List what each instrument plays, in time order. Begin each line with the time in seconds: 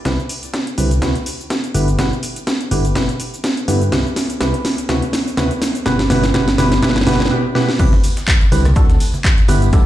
0.05 fm bass C2, synth stab C3 C4 E4 G4 B4, kick, snare, closed hi-hat, shaker
0.19 shaker
0.29 open hi-hat, shaker
0.43 closed hi-hat, shaker
0.54 kick, snare, closed hi-hat, shaker
0.67 closed hi-hat, shaker
0.78 fm bass C2, synth stab D3 C4 E4 G4 B4, open hi-hat, shaker
0.91 closed hi-hat, shaker
1.02 fm bass D2, synth stab C3 C4 E4 F#4 B4, kick, snare, closed hi-hat, shaker
1.15 closed hi-hat, shaker
1.26 open hi-hat, shaker
1.40 shaker
1.50 kick, snare, closed hi-hat, shaker
1.64 closed hi-hat, shaker
1.74 fm bass G1, synth stab D3 B3 E4 G4 B4, open hi-hat, shaker
1.88 closed hi-hat, shaker
1.99 fm bass G1, synth stab B2 B3 E4 G4 B4, kick, snare, closed hi-hat, shaker
2.13 shaker
2.23 open hi-hat, shaker
2.36 closed hi-hat, shaker
2.47 kick, snare, closed hi-hat, shaker
2.61 closed hi-hat, shaker
2.71 fm bass G1, synth stab D3 B3 E4 G4 B4, open hi-hat, shaker
2.85 closed hi-hat, shaker
2.95 fm bass G1, synth stab B2 B3 E4 G4 B4, kick, snare, closed hi-hat, shaker
3.09 closed hi-hat, shaker
3.20 open hi-hat, shaker
3.34 shaker
3.44 kick, snare, closed hi-hat, shaker
3.57 closed hi-hat, shaker
3.68 fm bass G2, synth stab D3 B3 E4 G4 B4, open hi-hat, shaker
3.81 closed hi-hat, shaker
3.92 fm bass C2, synth stab C3 C4 E4 G4 B4, kick, snare, closed hi-hat, shaker
4.06 shaker
4.16 snare, open hi-hat, shaker
4.30 closed hi-hat, shaker
4.41 fm bass C2, synth stab C3 C4 E4 G4 B4, kick, snare, closed hi-hat, shaker
4.54 closed hi-hat, shaker
4.65 snare, open hi-hat, shaker
4.78 closed hi-hat, shaker
4.89 fm bass D2, synth stab C3 C4 E4 F#4 B4, kick, snare, closed hi-hat, shaker
5.02 closed hi-hat, shaker
5.13 snare, open hi-hat, shaker
5.27 shaker
5.37 fm bass D2, synth stab C3 C4 E4 F#4 B4, kick, snare, closed hi-hat, shaker
5.51 closed hi-hat, shaker
5.62 snare, open hi-hat, shaker
5.75 closed hi-hat, shaker
5.86 fm bass G1, synth stab B2 B3 E4 G4 B4, kick, snare, closed hi-hat, shaker
5.99 snare, closed hi-hat, shaker
6.10 fm bass G1, synth stab B2 B3 E4 G4 B4, snare, open hi-hat, shaker
6.24 snare, closed hi-hat, shaker
6.34 fm bass G1, synth stab B2 B3 E4 G4 B4, kick, snare, closed hi-hat, shaker
6.48 snare, closed hi-hat, shaker
6.58 fm bass G1, synth stab B2 B3 E4 G4 B4, snare, open hi-hat, shaker
6.72 snare, closed hi-hat, shaker
6.83 fm bass G1, synth stab B2 B3 E4 G4 B4, kick, snare, closed hi-hat, shaker
6.89 snare
6.96 snare, closed hi-hat, shaker
7.01 snare
7.07 fm bass G1, synth stab B2 B3 E4 G4 B4, snare, open hi-hat, shaker
7.13 snare
7.20 kick, snare, shaker
7.26 snare
7.31 synth stab B2 B3 E4 G4 B4
7.55 synth stab B2 B3 E4 G4 B4, snare
7.69 snare
7.79 fm bass C2, synth stab C3 C4 E4 G4 B4, kick, closed hi-hat, crash, tambourine, shaker
7.92 closed hi-hat, tambourine, high conga, shaker
8.03 open hi-hat, tambourine, shaker
8.17 snare, closed hi-hat, tambourine, shaker
8.27 kick, snare, clap, closed hi-hat, tambourine, high conga, shaker
8.41 closed hi-hat, tambourine, shaker
8.52 fm bass C2, synth stab D3 C4 E4 G4 B4, open hi-hat, tambourine, shaker
8.65 cross-stick, snare, closed hi-hat, tambourine, high conga, shaker
8.76 fm bass D2, synth stab D3 C4 D4 F#4 A4, kick, closed hi-hat, tambourine, shaker
8.90 snare, closed hi-hat, tambourine, shaker
9.00 open hi-hat, tambourine, shaker
9.14 tambourine, high conga, shaker
9.24 kick, snare, clap, closed hi-hat, tambourine, shaker
9.38 closed hi-hat, tambourine, shaker
9.48 fm bass G1, synth stab G2 B3 E4 G4 B4, open hi-hat, tambourine, high conga, shaker
9.61 closed hi-hat, tambourine, shaker
9.73 fm bass G1, synth stab G2 B3 E4 G4 A4, kick, closed hi-hat, tambourine, shaker